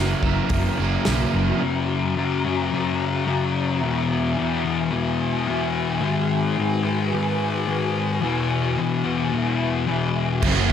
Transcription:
Already playing: fingered electric bass F#1, distorted electric guitar F#2 C#3 F#3, overdriven electric guitar C#3 E3 A#3, ambient pad F#4 E5 A#5
0.00 overdriven electric guitar E4
0.23 fingered electric bass F#1, distorted electric guitar C#3 F#3, overdriven electric guitar A#3 E4, kick
0.27 overdriven electric guitar E3
0.49 fingered electric bass F#1, distorted electric guitar F#2 C#3 F#3, kick, open hi-hat
0.79 fingered electric bass F#1, distorted electric guitar C#3 F#3, overdriven electric guitar E3 A#3 E4
1.05 fingered electric bass B1, distorted electric guitar F#2 C#3 F#3, overdriven electric guitar C#3 E3 A#3, snare, open hi-hat
1.10 overdriven electric guitar E4
1.33 fingered electric bass F#1, distorted electric guitar C#3 F#3
1.60 distorted electric guitar F#2 C#3 F#3, ambient pad F#4 E5 A#5
2.16 distorted electric guitar F#2 C#3 F#3
2.45 distorted electric guitar C#3 F#3
2.72 distorted electric guitar F#2 C#3 F#3
3.26 distorted electric guitar F#2 C#3 F#3
3.82 distorted electric guitar E2 B2 E3, ambient pad G#5
4.37 distorted electric guitar E2 B2 E3
4.64 distorted electric guitar B2 E3
4.91 distorted electric guitar E2 B2 E3
5.47 distorted electric guitar E2 B2 E3
6.00 distorted electric guitar G#2 D#3 G#3, ambient pad B4
6.57 distorted electric guitar G#2 D#3 G#3
6.83 distorted electric guitar D#3 G#3
7.13 distorted electric guitar G#2 D#3 G#3
7.67 distorted electric guitar G#2 D#3 G#3
8.22 distorted electric guitar E2 B2 E3, ambient pad E5
8.77 distorted electric guitar E2 B2 E3
9.04 distorted electric guitar B2 E3
9.32 distorted electric guitar E2 B2 E3
9.86 distorted electric guitar E2 B2 E3
10.42 fingered electric bass F#1, distorted electric guitar F#2 C#3 F#3, overdriven electric guitar F#2 C#3 E3 A#3 C#4, kick, crash
10.47 ambient pad A#5

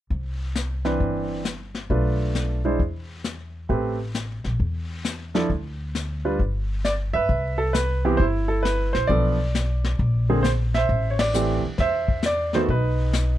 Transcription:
0.10 upright bass C2, brush sweep, kick
0.55 snare, hi-hat pedal
0.85 grand piano E3 C4 D4 B4, snare
1.00 upright bass G1, brush sweep, kick
1.45 snare, hi-hat pedal
1.75 snare
1.90 upright bass B1, grand piano A3 D4 F4 B4, brush sweep, kick
2.35 snare, hi-hat pedal
2.65 grand piano G#3 D4 E4 C5
2.79 upright bass E2, brush sweep, kick
3.24 snare, hi-hat pedal
3.69 upright bass A1, grand piano A3 C4 G4 B4, brush sweep, kick
4.15 snare, hi-hat pedal
4.44 upright bass A#1, snare
4.60 upright bass E2, brush sweep, kick
5.05 snare, hi-hat pedal
5.35 grand piano F3 D4 E4 A4, snare
5.50 upright bass D2, brush sweep, kick
5.95 snare, hi-hat pedal
6.25 grand piano G3 D4 F4 B4
6.39 upright bass G1, brush sweep, kick
6.85 grand piano D5, snare, hi-hat pedal
7.13 upright bass G2, grand piano B4 E5
7.29 upright bass C2, brush sweep, kick
7.58 grand piano A4
7.73 grand piano B4, snare, hi-hat pedal
8.05 grand piano E3 B3 C4 G4
8.17 upright bass G1, grand piano C5, brush sweep, kick
8.21 grand piano E4
8.48 grand piano A4
8.63 grand piano B4, snare, hi-hat pedal
8.93 upright bass A#1, grand piano C5, snare
9.07 upright bass B1, grand piano F3 B3 D4 A4 D5, brush sweep, kick
9.55 snare, hi-hat pedal
9.84 snare
9.99 upright bass A#1, brush sweep, kick
10.29 grand piano D3 A#3 C4 G#4
10.43 grand piano C5, snare, hi-hat pedal
10.74 grand piano C5 E5, snare
10.89 upright bass A1, brush sweep, kick
11.11 grand piano C#5
11.19 grand piano D5, snare, ride
11.34 grand piano E3 A3 C4 G4, hi-hat pedal
11.64 muted upright bass stroke
11.78 upright bass E2, grand piano C5 E5, brush sweep, kick, snare
12.08 kick
12.23 grand piano D5, snare, hi-hat pedal
12.53 grand piano D#3 A3 B3 F#4 C5, snare
12.68 upright bass B1, grand piano B4, brush sweep, kick
12.73 grand piano D#4
13.13 snare, hi-hat pedal

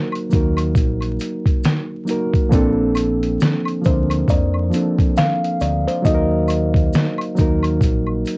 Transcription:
Already playing: reed electric piano F#3 A#3 D#4 F#4 A#4, kalimba A#4
0.12 closed hi-hat, high woodblock
0.29 fingered electric bass D#2, reed electric piano F#3 A#3 D#4, kick, closed hi-hat, maracas
0.34 reed electric piano F#4 A#4
0.57 closed hi-hat, high woodblock
0.75 fingered electric bass A#1, kick, closed hi-hat, maracas
1.01 closed hi-hat, high woodblock
1.19 closed hi-hat, maracas
1.46 kick, closed hi-hat
1.64 snare, closed hi-hat, maracas
2.05 reed electric piano F#3 A#3 D#4, maracas
2.09 reed electric piano F#4 A#4, closed hi-hat
2.34 kick, closed hi-hat
2.49 fingered electric bass A#1, reed electric piano F3 A#3 C4, kick, closed hi-hat, maracas
2.54 reed electric piano D4 A4
2.95 closed hi-hat, high woodblock, maracas
3.23 closed hi-hat
3.40 snare, closed hi-hat, maracas
3.65 closed hi-hat, high woodblock
3.82 reed electric piano F3 A#3 C4, maracas
3.86 fingered electric bass D2, reed electric piano D4 A#4, kalimba C5, kick, closed hi-hat
4.10 closed hi-hat, high woodblock
4.28 fingered electric bass F2, kalimba D5, kick, closed hi-hat, maracas
4.54 high woodblock
4.70 reed electric piano F3 A#3 C4, closed hi-hat, maracas
4.75 reed electric piano D4 A4
4.99 kick, closed hi-hat
5.17 kalimba F5, snare, closed hi-hat, maracas
5.44 closed hi-hat
5.60 fingered electric bass D2, kalimba D5, closed hi-hat, maracas
5.88 kalimba C5, closed hi-hat
6.02 fingered electric bass D#2, reed electric piano F#3 A#3 D#4, kalimba D#5, kick, maracas
6.06 reed electric piano F#4 A4, closed hi-hat
6.14 reed electric piano A#4
6.48 closed hi-hat, high woodblock, maracas
6.74 kick, closed hi-hat
6.93 snare, closed hi-hat, maracas
7.18 closed hi-hat, high woodblock
7.35 reed electric piano F#3 A#3 D#4, kick, maracas
7.39 fingered electric bass D#2, reed electric piano F#4 A#4, closed hi-hat
7.63 closed hi-hat, high woodblock
7.81 fingered electric bass A#1, kick, closed hi-hat, maracas
8.06 high woodblock
8.25 closed hi-hat, maracas

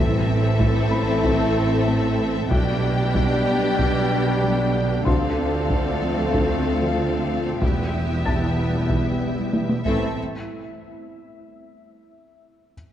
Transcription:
Already playing: double bass section A1, cello section A2, trombone section E3 A3, ambient pad A3 C4 E4 E5, french horn section C4 E4, viola section C4, violin section A4 E5
0.27 synth arpeggio sound A4
0.43 synth arpeggio sound A4
0.59 synth arpeggio sound A3, taiko
0.75 synth arpeggio sound A4
0.91 synth arpeggio sound C4, felt piano B5
1.07 synth arpeggio sound C4
1.23 synth arpeggio sound A3, taiko
1.40 synth arpeggio sound E4
1.56 synth arpeggio sound A4
1.72 synth arpeggio sound C4
1.88 synth arpeggio sound A3
2.04 synth arpeggio sound E4
2.19 synth arpeggio sound C4
2.35 synth arpeggio sound A4
2.51 double bass section B1, cello section B2, trombone section D3 G3, synth arpeggio sound G3, ambient pad B3 D4 G4 D5, french horn section B3 G4, viola section D4, violin section G4 G5, taiko
2.83 synth arpeggio sound G4
2.99 synth arpeggio sound G4
3.15 synth arpeggio sound G3, taiko
3.31 synth arpeggio sound G4
3.47 synth arpeggio sound B3
3.63 synth arpeggio sound B3
3.79 synth arpeggio sound G3, taiko
3.95 synth arpeggio sound D4
4.12 synth arpeggio sound G4
4.28 synth arpeggio sound B3
4.43 synth arpeggio sound G3
4.59 synth arpeggio sound D4
4.75 synth arpeggio sound B3
4.91 synth arpeggio sound G4
5.05 double bass section D2, cello section D2, synth arpeggio sound D3, ambient pad A3 C4 F4, trombone section A3, viola section C4, french horn section C4 F4, violin section A4 F5, felt piano C6, taiko
5.38 synth arpeggio sound C4
5.54 synth arpeggio sound C4
5.70 synth arpeggio sound D3, taiko
5.86 synth arpeggio sound C4
6.02 synth arpeggio sound F3
6.18 synth arpeggio sound F3
6.34 synth arpeggio sound D3, taiko
6.50 synth arpeggio sound A3
6.66 synth arpeggio sound C4
6.82 synth arpeggio sound F3
6.98 synth arpeggio sound D3
7.13 synth arpeggio sound A3
7.30 synth arpeggio sound F3
7.46 synth arpeggio sound C4
7.60 double bass section E1, cello section E2, trombone section E3 G3, synth arpeggio sound E3, ambient pad G3 B3 E4 E5, viola section B3, french horn section B3 E4, violin section G4 E5, taiko
7.94 synth arpeggio sound E4
8.10 synth arpeggio sound E4
8.25 synth arpeggio sound E3, felt piano A5 A6, taiko
8.42 synth arpeggio sound E4
8.58 synth arpeggio sound G3
8.74 synth arpeggio sound G3
8.90 synth arpeggio sound E3, taiko
9.06 synth arpeggio sound B3
9.22 synth arpeggio sound E4
9.38 synth arpeggio sound G3
9.53 synth arpeggio sound E3, taiko high
9.69 synth arpeggio sound B3, taiko high
9.84 double bass section A1, cello section A2, trombone section E3 A3, viola section C4, french horn section C4 E4, violin section A4 E5, taiko

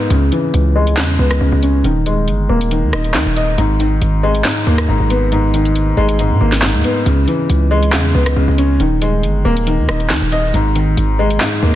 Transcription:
Already playing: grand piano G#2 D#3 G#3 A#3 B3
0.10 808-style bass C#2, grand piano C#3, closed hi-hat
0.32 grand piano E3, closed hi-hat
0.54 808-style bass C#2, closed hi-hat
0.76 grand piano G#3
0.87 closed hi-hat
0.97 808-style bass E2, grand piano C#3, snare, clap, closed hi-hat
1.19 808-style bass C#2, grand piano B3
1.31 cross-stick, closed hi-hat
1.41 808-style bass C#2, grand piano C#3
1.52 808-style bass C#2
1.63 grand piano C#4, closed hi-hat
1.84 808-style bass D#1, grand piano D#3, closed hi-hat
2.06 grand piano G#3, closed hi-hat
2.28 808-style bass G1, closed hi-hat
2.49 808-style bass D#1, grand piano A#3
2.61 closed hi-hat
2.71 grand piano D#3, closed hi-hat
2.83 808-style bass D#2
2.93 808-style bass D#1, grand piano D#4, cross-stick
3.04 closed hi-hat
3.15 808-style bass D#2, grand piano D#3, snare, clap
3.26 808-style bass D#1
3.36 grand piano D#5, closed hi-hat
3.58 808-style bass G#1, grand piano G#2, closed hi-hat
3.80 grand piano D#3, closed hi-hat
4.02 808-style bass G#1, closed hi-hat
4.23 grand piano G#3
4.35 closed hi-hat
4.45 grand piano G#2, snare, clap, closed hi-hat
4.67 808-style bass D#2, grand piano A#3
4.78 cross-stick, closed hi-hat
4.89 808-style bass G#1, grand piano G#2
5.00 808-style bass G#1
5.10 grand piano B3, closed hi-hat
5.32 grand piano G#2, closed hi-hat
5.54 grand piano D#3, closed hi-hat
5.65 closed hi-hat
5.75 closed hi-hat
5.97 808-style bass G#1, grand piano G#3
6.09 closed hi-hat
6.19 grand piano G#2, closed hi-hat
6.31 808-style bass G#2
6.41 808-style bass G#1, grand piano A#3
6.52 snare, closed hi-hat
6.62 grand piano G#2, snare, clap
6.74 808-style bass D#2
6.84 grand piano B3, closed hi-hat
7.06 808-style bass C#2, grand piano C#3, closed hi-hat
7.28 grand piano E3, closed hi-hat
7.49 808-style bass C#2, closed hi-hat
7.71 grand piano G#3
7.83 closed hi-hat
7.93 808-style bass E2, grand piano C#3, snare, clap, closed hi-hat
8.15 808-style bass C#2, grand piano B3
8.26 cross-stick, closed hi-hat
8.36 808-style bass C#2, grand piano C#3
8.48 808-style bass C#2
8.58 grand piano C#4, closed hi-hat
8.80 808-style bass D#1, grand piano D#3, closed hi-hat
9.02 grand piano G#3, closed hi-hat
9.23 808-style bass G1, closed hi-hat
9.45 808-style bass D#1, grand piano A#3
9.57 closed hi-hat
9.67 grand piano D#3, closed hi-hat
9.78 808-style bass D#2
9.89 808-style bass D#1, grand piano D#4, cross-stick
10.00 closed hi-hat
10.10 808-style bass D#2, grand piano D#3, snare, clap
10.22 808-style bass D#1
10.32 grand piano D#5, closed hi-hat
10.54 808-style bass G#1, grand piano G#2, closed hi-hat
10.76 grand piano D#3, closed hi-hat
10.97 808-style bass G#1, closed hi-hat
11.19 grand piano G#3
11.30 closed hi-hat
11.41 grand piano G#2, snare, clap, closed hi-hat
11.63 808-style bass D#2, grand piano A#3

